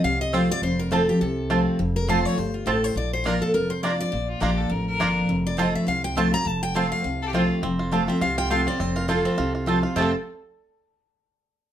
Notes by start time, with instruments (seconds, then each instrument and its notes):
0.04 upright bass C2, steel-string acoustic guitar C3 F5
0.21 steel-string acoustic guitar D#5
0.33 steel-string acoustic guitar F3 A3 C4 F4 C5, mandolin C4 F4 C5 A5, five-string banjo C4 F4
0.50 steel-string acoustic guitar C4 F4 D5
0.62 upright bass F1, steel-string acoustic guitar F2 C5
0.79 steel-string acoustic guitar A#4
0.91 steel-string acoustic guitar F3 A3 C4 F4 A4, five-string banjo C4 F4, mandolin C4 F4 C5 A5
1.08 steel-string acoustic guitar C4 F4 G4
1.21 upright bass C2, steel-string acoustic guitar C3 A4
1.50 steel-string acoustic guitar F3 A3 C4 F4, mandolin C4 F4 C5 A5, five-string banjo C4 F4
1.79 upright bass F1, steel-string acoustic guitar F2
1.96 steel-string acoustic guitar A#4
2.08 steel-string acoustic guitar F3 A3 C4 F4 C5, mandolin C4 F4 C5 A5, five-string banjo C4 F4
2.25 steel-string acoustic guitar C#5
2.37 upright bass G1, steel-string acoustic guitar G2 C5
2.54 steel-string acoustic guitar F4
2.66 upright bass A1, steel-string acoustic guitar A2 A4, mandolin C4 F4 C5 A5, five-string banjo C4 F4
2.84 steel-string acoustic guitar C5
2.96 upright bass A#1, steel-string acoustic guitar A#2 D5
3.13 steel-string acoustic guitar C5
3.24 steel-string acoustic guitar F3 A#3 D4 F4 A#4, five-string banjo A#3 D4 F4, mandolin A#3 F4 D5 A#5
3.42 steel-string acoustic guitar A4
3.54 upright bass F1, steel-string acoustic guitar F2 A#4
3.70 steel-string acoustic guitar C5
3.83 steel-string acoustic guitar F3 A#3 D4 F4 D5, mandolin A#3 F4 D5 A#5, five-string banjo A#3 D4 F4
3.98 steel-string acoustic guitar D4 F4 D5
4.12 upright bass A#1, steel-string acoustic guitar A#2
4.29 fiddle F4
4.40 upright bass A#1, steel-string acoustic guitar F3 A#3 D4 F4, mandolin A#3 F4 D5 A#5, five-string banjo A#3 D4 F4, fiddle G4
4.58 fiddle A4
4.70 upright bass A1, steel-string acoustic guitar F2, fiddle A#4
4.88 fiddle A#4
5.00 upright bass G1, steel-string acoustic guitar F3 A#3 D4 F4, mandolin A#3 F4 D5 A#5, five-string banjo A#3 D4 F4
5.29 upright bass F1, steel-string acoustic guitar F2
5.47 steel-string acoustic guitar D5
5.57 steel-string acoustic guitar F3 A3 C4 F4 D#5, mandolin C4 F4 C5 A5, five-string banjo C4 F4
5.75 steel-string acoustic guitar E5
5.87 upright bass C2, steel-string acoustic guitar C3 F5
6.04 steel-string acoustic guitar G5
6.15 steel-string acoustic guitar F3 A3 C4 F4 A5, mandolin C4 F4 C5 A5, five-string banjo C4 F4
6.31 steel-string acoustic guitar C4 F4 A#5
6.45 upright bass F1, steel-string acoustic guitar F2 A5
6.63 steel-string acoustic guitar G5
6.74 steel-string acoustic guitar F3 A3 C4 F4 F5, mandolin C4 F4 C5 A5, five-string banjo C4 F4
6.92 steel-string acoustic guitar F5
7.04 upright bass C2, steel-string acoustic guitar C3
7.22 fiddle A4
7.28 fiddle G4
7.33 steel-string acoustic guitar F3 A3 C4 F4, mandolin C4 F4 C5 A5, five-string banjo C4 F4, fiddle F4
7.63 upright bass F1, steel-string acoustic guitar F2, five-string banjo C4
7.79 five-string banjo F4
7.91 steel-string acoustic guitar F3 A3 C4 F4, mandolin C4 F4 C5 A5, five-string banjo F4
8.07 five-string banjo C4, steel-string acoustic guitar C4 F4 E5
8.21 upright bass C2, steel-string acoustic guitar C3 F5, five-string banjo F4
8.38 five-string banjo F4, steel-string acoustic guitar G5
8.50 steel-string acoustic guitar F3 A3 C4 F4 F5, mandolin C4 F4 C5 A5, five-string banjo F4
8.67 five-string banjo C4, steel-string acoustic guitar F4 D5
8.80 upright bass F1, steel-string acoustic guitar F2 C5, five-string banjo C4
8.96 five-string banjo F4, steel-string acoustic guitar A#4
9.08 steel-string acoustic guitar F3 A3 C4 F4 A4, mandolin C4 F4 C5 A5, five-string banjo F4
9.25 five-string banjo C4, steel-string acoustic guitar A4
9.38 upright bass C2, steel-string acoustic guitar C3, five-string banjo F4
9.55 five-string banjo F4
9.66 steel-string acoustic guitar F3 A3 C4 F4, mandolin C4 F4 C5 A5, five-string banjo F4
9.83 steel-string acoustic guitar C4 F4, five-string banjo F4
9.96 upright bass F1, steel-string acoustic guitar F2 C3 F3 A3 C4 F4 A4, five-string banjo A3 C4, mandolin C4 F4 C5 A5, fiddle A4
10.00 five-string banjo F4 A4